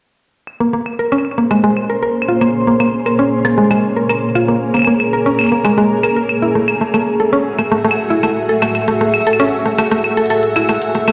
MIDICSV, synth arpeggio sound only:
0, 0, Header, 1, 2, 480
1, 0, Start_track
1, 0, Tempo, 517241
1, 441, Time_signature, 4, 2, 24, 8
1, 10319, End_track
2, 0, Start_track
2, 0, Title_t, "Synth arpeggio sound"
2, 0, Program_c, 0, 84
2, 561, Note_on_c, 0, 58, 74
2, 660, Note_off_c, 0, 58, 0
2, 680, Note_on_c, 0, 58, 72
2, 740, Note_off_c, 0, 58, 0
2, 921, Note_on_c, 0, 70, 79
2, 1020, Note_off_c, 0, 70, 0
2, 1040, Note_on_c, 0, 61, 95
2, 1139, Note_off_c, 0, 61, 0
2, 1280, Note_on_c, 0, 58, 74
2, 1379, Note_off_c, 0, 58, 0
2, 1400, Note_on_c, 0, 56, 94
2, 1499, Note_off_c, 0, 56, 0
2, 1520, Note_on_c, 0, 56, 96
2, 1619, Note_off_c, 0, 56, 0
2, 1760, Note_on_c, 0, 70, 70
2, 1859, Note_off_c, 0, 70, 0
2, 1880, Note_on_c, 0, 70, 79
2, 1979, Note_off_c, 0, 70, 0
2, 2121, Note_on_c, 0, 65, 72
2, 2220, Note_off_c, 0, 65, 0
2, 2240, Note_on_c, 0, 58, 76
2, 2339, Note_off_c, 0, 58, 0
2, 2481, Note_on_c, 0, 58, 74
2, 2580, Note_off_c, 0, 58, 0
2, 2599, Note_on_c, 0, 58, 72
2, 2659, Note_off_c, 0, 58, 0
2, 2840, Note_on_c, 0, 70, 78
2, 2939, Note_off_c, 0, 70, 0
2, 2959, Note_on_c, 0, 61, 97
2, 3059, Note_off_c, 0, 61, 0
2, 3200, Note_on_c, 0, 58, 71
2, 3299, Note_off_c, 0, 58, 0
2, 3319, Note_on_c, 0, 56, 98
2, 3419, Note_off_c, 0, 56, 0
2, 3440, Note_on_c, 0, 56, 95
2, 3539, Note_off_c, 0, 56, 0
2, 3679, Note_on_c, 0, 70, 75
2, 3779, Note_off_c, 0, 70, 0
2, 3800, Note_on_c, 0, 70, 81
2, 3899, Note_off_c, 0, 70, 0
2, 4040, Note_on_c, 0, 65, 78
2, 4140, Note_off_c, 0, 65, 0
2, 4160, Note_on_c, 0, 58, 73
2, 4260, Note_off_c, 0, 58, 0
2, 4400, Note_on_c, 0, 58, 74
2, 4500, Note_off_c, 0, 58, 0
2, 4521, Note_on_c, 0, 58, 75
2, 4580, Note_off_c, 0, 58, 0
2, 4762, Note_on_c, 0, 70, 80
2, 4860, Note_off_c, 0, 70, 0
2, 4881, Note_on_c, 0, 61, 99
2, 4980, Note_off_c, 0, 61, 0
2, 5122, Note_on_c, 0, 58, 72
2, 5220, Note_off_c, 0, 58, 0
2, 5241, Note_on_c, 0, 56, 97
2, 5340, Note_off_c, 0, 56, 0
2, 5361, Note_on_c, 0, 56, 99
2, 5460, Note_off_c, 0, 56, 0
2, 5601, Note_on_c, 0, 70, 74
2, 5700, Note_off_c, 0, 70, 0
2, 5721, Note_on_c, 0, 70, 78
2, 5820, Note_off_c, 0, 70, 0
2, 5961, Note_on_c, 0, 64, 75
2, 6060, Note_off_c, 0, 64, 0
2, 6081, Note_on_c, 0, 57, 76
2, 6180, Note_off_c, 0, 57, 0
2, 6321, Note_on_c, 0, 57, 77
2, 6420, Note_off_c, 0, 57, 0
2, 6441, Note_on_c, 0, 57, 74
2, 6500, Note_off_c, 0, 57, 0
2, 6680, Note_on_c, 0, 69, 79
2, 6780, Note_off_c, 0, 69, 0
2, 6800, Note_on_c, 0, 61, 102
2, 6899, Note_off_c, 0, 61, 0
2, 7040, Note_on_c, 0, 57, 75
2, 7139, Note_off_c, 0, 57, 0
2, 7160, Note_on_c, 0, 57, 97
2, 7259, Note_off_c, 0, 57, 0
2, 7280, Note_on_c, 0, 57, 100
2, 7379, Note_off_c, 0, 57, 0
2, 7520, Note_on_c, 0, 64, 72
2, 7619, Note_off_c, 0, 64, 0
2, 7640, Note_on_c, 0, 57, 78
2, 7740, Note_off_c, 0, 57, 0
2, 7880, Note_on_c, 0, 69, 75
2, 7980, Note_off_c, 0, 69, 0
2, 8001, Note_on_c, 0, 57, 99
2, 8100, Note_off_c, 0, 57, 0
2, 8240, Note_on_c, 0, 57, 74
2, 8339, Note_off_c, 0, 57, 0
2, 8361, Note_on_c, 0, 57, 76
2, 8420, Note_off_c, 0, 57, 0
2, 8601, Note_on_c, 0, 69, 77
2, 8700, Note_off_c, 0, 69, 0
2, 8720, Note_on_c, 0, 61, 104
2, 8819, Note_off_c, 0, 61, 0
2, 8960, Note_on_c, 0, 57, 74
2, 9060, Note_off_c, 0, 57, 0
2, 9080, Note_on_c, 0, 57, 101
2, 9180, Note_off_c, 0, 57, 0
2, 9201, Note_on_c, 0, 57, 97
2, 9300, Note_off_c, 0, 57, 0
2, 9441, Note_on_c, 0, 69, 75
2, 9540, Note_off_c, 0, 69, 0
2, 9561, Note_on_c, 0, 69, 82
2, 9660, Note_off_c, 0, 69, 0
2, 9801, Note_on_c, 0, 64, 76
2, 9900, Note_off_c, 0, 64, 0
2, 9921, Note_on_c, 0, 57, 78
2, 10020, Note_off_c, 0, 57, 0
2, 10161, Note_on_c, 0, 57, 75
2, 10260, Note_off_c, 0, 57, 0
2, 10281, Note_on_c, 0, 57, 76
2, 10319, Note_off_c, 0, 57, 0
2, 10319, End_track
0, 0, End_of_file